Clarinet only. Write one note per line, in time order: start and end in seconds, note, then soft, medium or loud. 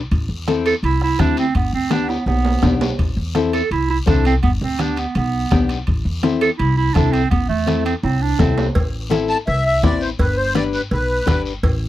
0.67 0.74 A4 medium
0.84 1.01 E4 medium
1.03 1.22 E4 medium
1.20 1.38 D4 medium
1.39 1.55 C4 medium
1.56 1.73 B3 medium
1.74 1.93 C4 medium
1.91 2.10 D4 medium
2.09 2.27 B3 medium
2.27 2.78 B3 medium
3.54 3.70 A4 medium
3.72 3.88 E4 medium
3.90 3.98 E4 medium
4.08 4.25 D4 medium
4.26 4.34 C4 medium
4.43 4.51 B3 medium
4.62 4.82 C4 medium
4.80 5.00 D4 medium
4.99 5.16 B3 medium
5.16 5.66 B3 medium
6.42 6.50 A4 medium
6.58 6.76 E4 medium
6.77 6.95 E4 medium
6.94 7.13 D4 medium
7.12 7.30 C4 loud
7.30 7.48 B3 medium
7.49 7.83 A3 medium
7.85 7.93 C4 medium
8.04 8.23 C4 medium
8.22 8.42 D4 medium
8.41 8.67 C4 medium